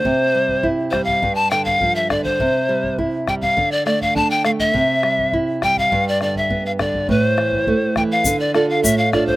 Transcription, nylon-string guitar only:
\new Staff \with { instrumentName = "Nylon-string guitar" } { \clef bass \time 2/4 \key c \major \tempo 4 = 102 c8 g8 e'8 g8 | g,8 d8 f8 d8 | c8 g8 e'8 g8 | d8 a8 d'8 a8 |
c8 g8 e'8 g8 | g,8 d8 b8 d8 | a,8 e8 a8 e8 | d8 <d' f' a'>8 a,8 <d' f' a'>8 | }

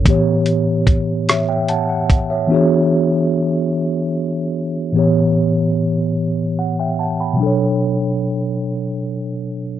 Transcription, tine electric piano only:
\new Staff \with { instrumentName = "Tine electric piano" } { \time 6/8 \key b \minor \tempo 4. = 49 << { r4. <cis'' e''>16 <e'' g''>16 <fis'' a''>16 fis''8 <cis'' e''>16~ | <cis'' e''>16 r2 r8. | r2 fis''16 <e'' g''>16 <fis'' a''>16 <g'' b''>16~ | <g'' b''>16 r2 r8. | } \\ { <a, e b g' cis''>2. | <e b d' fis' gis' cis''>2. | <a, e b g' cis''>2. | <b, fis d' a' cis''>2. | } >> }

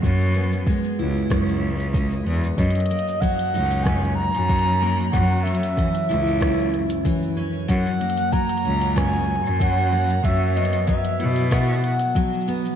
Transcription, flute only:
\new Staff \with { instrumentName = "Flute" } { \time 4/4 \key fis \mixolydian \tempo 4 = 94 r1 | dis''4 fis''4 gis''8 ais''4. | fis''8 e''2 r4. | fis''4 ais''4 gis''4 fis''4 |
e''8 dis''8 e''4 fis''4. r8 | }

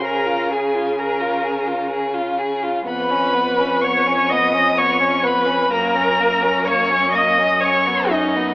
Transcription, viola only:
\new Staff \with { instrumentName = "Viola" } { \time 3/4 \key des \major \tempo 4 = 63 bes'8 aes'8 bes'4 r4 | \key fis \major b'4 cis''8 dis''8 cis''8 b'8 | ais'4 cis''8 dis''8 cis''8 dis'8 | }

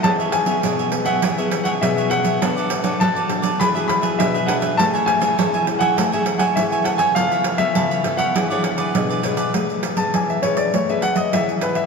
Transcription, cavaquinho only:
\new Staff \with { instrumentName = "Cavaquinho" } { \time 4/4 \key e \mixolydian \tempo 4 = 101 <e' gis' cis'' e''>16 <gis' cis'' e''>8 <gis' cis'' e''>16 <e' gis' cis'' e''>16 <gis' cis'' e''>16 r16 <gis' cis'' e''>16 <e' gis' cis'' e''>16 <gis' cis'' e''>16 r16 <gis' cis'' e''>8 <gis' cis'' e''>16 <e' gis' cis'' e''>16 <gis' cis'' e''>16 | <d' a' b' d''>16 <a' b' d''>8 <a' b' d''>16 <d' a' b' d''>16 <a' b' d''>16 r16 <a' b' d''>16 <d' gis' b' e''>16 <gis' b' e''>16 r16 <gis' b' e''>8 <gis' b' e''>16 <d' gis' b' e''>16 <gis' b' e''>16 | <a' cis'' e'' gis''>16 <cis'' e'' gis''>8 <cis'' e'' gis''>16 <a' cis'' e'' gis''>16 <cis'' e'' gis''>16 r16 <cis'' e'' gis''>16 <a' cis'' e'' gis''>16 <cis'' e'' gis''>16 r16 <cis'' e'' gis''>8 <cis'' e'' gis''>16 <a' cis'' e'' gis''>16 <cis'' e'' gis''>16 | <a' cis'' eis'' b''>16 <cis'' eis'' b''>8 <cis'' eis'' b''>16 <a' cis'' eis'' b''>16 <cis'' eis'' b''>16 r16 <cis'' eis'' b''>16 <e' gis' b' d''>16 <gis' b' d''>16 r16 <gis' b' d''>8 <gis' b' d''>16 <e' gis' b' d''>16 <gis' b' d''>16 |
\key a \major r1 | }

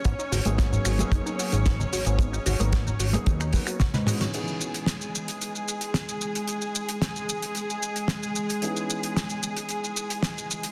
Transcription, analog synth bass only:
\new Staff \with { instrumentName = "Analog synth bass" } { \clef bass \time 4/4 \key cis \dorian \tempo 4 = 112 gis,,16 r16 gis,,16 gis,,8 r16 gis,,16 r16 fis,,16 r8 gis,,8 r16 gis,,16 gis,,16~ | gis,,16 r16 gis,,16 gis,,8 r16 gis,,16 r16 dis,8 r8. gis,8 r16 | r1 | r1 |
r1 | }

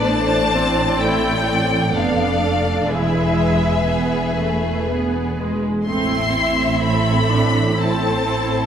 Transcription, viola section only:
\new Staff \with { instrumentName = "Viola section" } { \time 3/4 \key a \minor \tempo 4 = 63 << { d'4 e'8 c'8 d'4 | e'4 b8 a8 b8 gis8 | c'4 e'8 d'8 e'8 e'8 | } \\ { a8 c'4. b8 a8 | gis4 r2 | a8 c'4. c'4 | } >> }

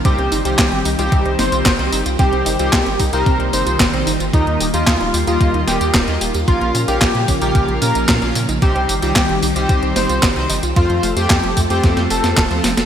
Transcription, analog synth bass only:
\new Staff \with { instrumentName = "Analog synth bass" } { \clef bass \time 4/4 \key c \phrygian \tempo 4 = 112 c,16 c,16 g,,16 c,16 c,16 g,,16 c,16 c,16 c,16 c,16 g,,16 c,16 g,,16 c,16 g,,16 c,16 | c,16 c,16 g,,16 c,16 c,16 g,,16 c,16 c,16 c,16 c,16 g,,16 c,16 g,,16 bes,,16 g,,16 g,,16 | ees,16 ees,16 ees,,16 ees,16 ees,16 ees,,16 ees,16 ees,16 ees,16 ees,16 ees,,16 ees,16 ees,,16 ees,16 ees,,16 ees,16 | bes,,16 bes,,16 bes,16 bes,,16 bes,,16 bes,16 bes,,16 bes,,16 bes,,16 bes,,16 bes,16 bes,,16 bes,16 bes,,16 bes,16 bes,,16 |
c,16 c,16 g,,16 c,16 c,16 g,,16 c,16 c,16 c,16 c,16 g,,16 c,16 g,,16 c,16 g,,16 c,16 | f,16 f,16 f,,16 f,16 f,16 f,,16 f,16 f,16 f,16 f,16 f,,16 f,16 f,,16 ees,16 f,,16 f,,16 | }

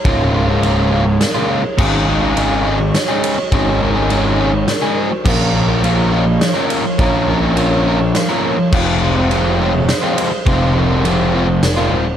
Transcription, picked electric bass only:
\new Staff \with { instrumentName = "Picked electric bass" } { \clef bass \time 3/4 \key bes \minor \tempo 4 = 104 des,,2 r4 | aes,,2 r4 | aes,,2 r4 | bes,,2 r4 |
bes,,2 r4 | f,,2 r4 | f,,2 f,,8 ees,,8 | }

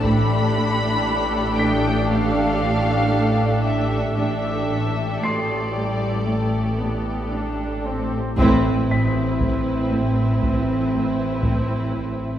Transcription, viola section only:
\new Staff \with { instrumentName = "Viola section" } { \time 4/4 \key a \minor \tempo 4 = 58 <a d'>1 | <a d'>4 a8 g8 a8 b8 d'8 c'8 | c'1 | }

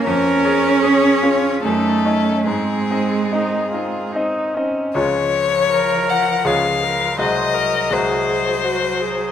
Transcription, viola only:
\new Staff \with { instrumentName = "Viola" } { \time 3/4 \key des \major \tempo 4 = 78 bes'4 aes'8 f'8 ees'8 des'8 | c'4 ees'8 f'8 ees'8 des'8 | r4 bes'4 aes'8 bes'8 | c''8 bes'8 aes'4 ges'8 aes'8 | }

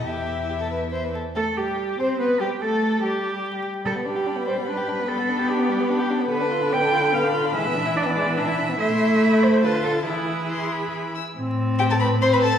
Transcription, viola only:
\new Staff \with { instrumentName = "Viola" } { \time 3/4 \key g \major \tempo 4 = 144 e'2~ e'8 r8 | a8 g4 c'8 b8 g8 | a4 g4. r8 | g2. |
b2. | \key a \minor d2. | e2. | a2 d4 |
e2~ e8 r8 | c'2 c'4 | }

